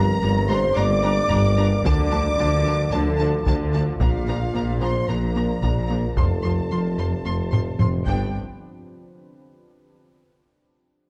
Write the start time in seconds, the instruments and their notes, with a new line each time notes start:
Already playing: tuba G1, double bass section G1, analog synth bass G2, cello section G2, ambient pad G3 A#3 A#4 D5, synth pluck G4, french horn section A#4, violin section A#5
0.22 double bass section G1, tuba G1, cello section G2, viola section G3 D4, analog synth bass G3, violin section A#5
0.49 analog synth bass G2, viola section G3 D4, synth pluck G3, french horn section C5, violin section A#5 C6
0.76 double bass section G1, tuba G1, cello section G2, analog synth bass G2, viola section G3 D4, synth pluck A#3, french horn section D5, violin section A#5 D6
1.03 viola section G3 D4, analog synth bass G3, synth pluck D4, violin section A#5
1.30 tuba G1, double bass section G1, analog synth bass G2, cello section G2, viola section G3 D4, synth pluck G3, violin section A#5, taiko
1.57 viola section G3 D4, analog synth bass G3, synth pluck D4, violin section A#5
1.84 analog synth bass D2, tuba D2, double bass section D2, cello section D3, synth pluck D3, viola section F3 D4, ambient pad F3 A3 F4, french horn section D5, violin section A5 D6, taiko
2.11 analog synth bass D2, viola section F3 D4, synth pluck D4, violin section A5
2.37 double bass section D2, tuba D2, analog synth bass D3, cello section D3, viola section F3 D4, violin section A5
2.65 analog synth bass D2, synth pluck D3, viola section F3 D4, violin section A5
2.92 analog synth bass D2, tuba D2, double bass section D2, cello section D3, synth pluck F3, viola section F3 D4, french horn section A4, violin section A5
3.19 analog synth bass D3, viola section F3 D4, synth pluck A3, violin section A5
3.46 analog synth bass D2, tuba D2, double bass section D2, cello section D3, synth pluck D3, viola section F3 D4, violin section A5, taiko
3.73 analog synth bass D3, viola section F3 D4, synth pluck A3, violin section A5
4.00 tuba A#1, double bass section A#1, analog synth bass A#2, cello section A#2, viola section F3 D4, ambient pad A#3, synth pluck A#3, french horn section F4, violin section F5 A#5, taiko
4.28 analog synth bass A#2, viola section F3 D4, synth pluck A#4, violin section A#5
4.53 tuba A#1, double bass section A#1, cello section A#2, viola section F3 D4, analog synth bass A#3, violin section A#5
4.81 analog synth bass A#2, viola section F3 D4, synth pluck A#3, french horn section C5, violin section A#5 C6
5.08 tuba A#1, double bass section A#1, analog synth bass A#2, cello section A#2, viola section F3 D4, synth pluck D4, french horn section A#4, violin section A#5
5.36 viola section F3 D4, analog synth bass A#3, synth pluck F4, violin section A#5
5.62 tuba A#1, double bass section A#1, analog synth bass A#2, cello section A#2, viola section F3 D4, synth pluck A#3, violin section A#5, taiko
5.88 viola section F3 D4, analog synth bass A#3, synth pluck F4, violin section A#5
6.16 tuba F1, double bass section F1, analog synth bass F2, cello section F2, viola section F3 F4, synth pluck F3, ambient pad C4 C5, french horn section A4, violin section A5 C6, taiko
6.44 analog synth bass F2, viola section F3 F4, synth pluck F4, violin section C6
6.71 tuba F1, double bass section F1, cello section F2, viola section F3 F4, analog synth bass F3, violin section C6
6.98 analog synth bass F2, viola section F3 F4, synth pluck F3, violin section C6
7.25 tuba F1, double bass section F1, analog synth bass F2, cello section F2, viola section F3 F4, synth pluck A3, violin section C6
7.52 analog synth bass F3, viola section F3 F4, synth pluck C4, violin section C6, taiko low-mid
7.79 tuba F1, double bass section F1, analog synth bass F2, cello section F2, synth pluck F3, viola section F3 F4, violin section C6, taiko low-mid
8.05 tuba G1, double bass section G1, cello section G2, viola section B3 D4, french horn section G4, violin section G5, taiko